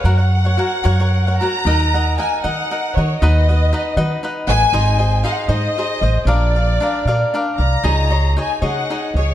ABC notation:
X:1
M:6/8
L:1/16
Q:3/8=77
K:F#
V:1 name="Violin section"
f8- f2 a2- | [K:Ebm] ^a4 _a2 g4 d2 | ^d8 z2 a2- | a4 f/2 g/2 f e6 |
=d8 z2 b2- | b4 a2 g4 d2 |]
V:2 name="Cavaquinho"
[FAcf] [Acf]2 [Acf] [FAcf]2 [FAcf] [Acf]2 [Acf] [FAcf]2 | [K:Ebm] [EBeg]2 [Beg]2 [EBeg]2 [EBeg]2 [EBeg]2 [Beg]2 | [^D=B^d^f]2 [Bdf]2 [DBdf]2 [DBdf]2 [DBdf]2 [Bdf]2 | [EA=ce]2 [Ace]2 [EAce]2 [EAce]2 [EAce]2 [Ace]2 |
[=DB=df]2 [Bdf]2 [DBdf]2 [DBdf]2 [DBdf]2 [Bdf]2 | [EAde]2 [Ade]2 [EAde]2 [EAde]2 [EAde]2 [Ade]2 |]
V:3 name="Upright bass" clef=bass
F,,6 F,,6 | [K:Ebm] E,,6 E,2 z2 E,2 | ^D,,6 ^D,2 z2 =A,,,2 | A,,,6 A,,2 z2 =A,,,2 |
B,,,6 B,,2 z2 =C,,2 | D,,6 D,2 z2 D,,2 |]